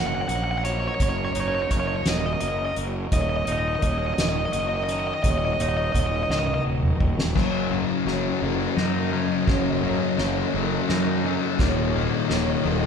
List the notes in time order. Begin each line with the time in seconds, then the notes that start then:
Already playing: F#1 F#2 F#3 A#3 C#4 D#4 A#4 D#5
0.07 F#5
0.15 F#5
0.21 F#5
0.28 A#1 A#3 F#5, closed hi-hat
0.36 F#5
0.44 F#5
0.51 F#5
0.58 F#5
0.65 F#3 C#5 D#5, closed hi-hat
0.72 C#5
0.80 C#5
0.87 C#5
0.95 C#5
1.00 F#1 F#2 C#5, kick, closed hi-hat
1.09 C#5
1.18 C#5
1.25 C#5
1.33 F#1 D#4 C#5, closed hi-hat
1.40 C#5
1.48 C#5
1.55 C#5
1.62 C#5
1.71 F#1 A#3 C#5, kick, closed hi-hat
1.80 C#5
1.87 C#5
1.96 C#5
2.06 D#1 F#3 A#4 D#5, snare, closed hi-hat
2.18 D#5
2.26 D#5
2.33 D#5
2.41 F#1 A#3 D#5, closed hi-hat
2.48 D#5
2.59 D#5
2.65 D#5
2.76 F#1 F#3 D#5, closed hi-hat
3.11 D#1 D#2 D#3 F#4 C#5 D#5, kick, closed hi-hat
3.21 D#5
3.29 D#5
3.37 D#5
3.46 D#1 D#4 D#5, closed hi-hat
3.52 D#5
3.59 D#5
3.68 D#5
3.75 D#5
3.82 D#1 F#3 C#5 D#5, kick, closed hi-hat
3.92 D#5
3.98 D#5
4.07 D#5
4.14 D#5
4.18 D#1 D#3 A#4 D#5, snare, closed hi-hat
4.29 D#5
4.38 D#5
4.45 D#5
4.52 F#1 F#3 D#5, closed hi-hat
4.60 D#5
4.69 D#5
4.76 D#5
4.83 D#5
4.89 D#3 D#5, closed hi-hat
5.00 D#5
5.07 D#5
5.14 D#5
5.23 D#1 D#2 C#5 D#5, kick, closed hi-hat
5.30 D#5
5.38 D#5
5.45 D#5
5.53 D#5
5.58 D#1 D#4 C#5 D#5, closed hi-hat
5.69 D#5
5.77 D#5
5.84 D#5
5.92 D#1 F#3 D#5, kick, closed hi-hat
6.00 D#5
6.06 D#5
6.16 D#5
6.23 D#5
6.29 C#2 D#3 A#4 D#5, snare
6.39 D#5
6.47 D#5, high tom
6.54 D#5
6.65 D#1 F#3
6.83 mid tom
7.00 D#1 D#3 D#5, kick
7.19 snare
7.35 F#1 F#2 C#3 F#3 C#4 A#4 C#5 D#5, kick, snare, crash
7.70 F#2 C#3 F#3 A#3, ride
8.05 F#1 F#2 C#3 F#3 C#5, snare, ride
8.42 F#1 F#2 C#3 F#3 A#3 A#4, ride
8.77 F#2 C#3 F#3 D#4, snare, ride
9.12 F#2 C#3 F#3 C#4, ride
9.47 F#1 F#2 C#3 F#3 C#5, kick, snare, ride
9.83 F#2 C#3 F#3 A#3 C#5, ride
10.18 F#1 F#2 C#3 F#3, snare, ride
10.53 F#1 F#2 C#3 F#3 A#3 A#4, ride
10.89 F#2 C#3 F#3 D#4, snare, ride
11.24 F#2 C#3 F#3 C#4 D#5, ride
11.59 D#1 D#2 A#2 D#3 F#4 C#5 D#5, kick, snare, ride
11.95 D#2 A#2 D#3 F#3, ride
12.30 D#1 D#2 A#2 D#3 C#5, snare, ride
12.64 D#1 D#2 A#2 D#3 F#3 A#4, ride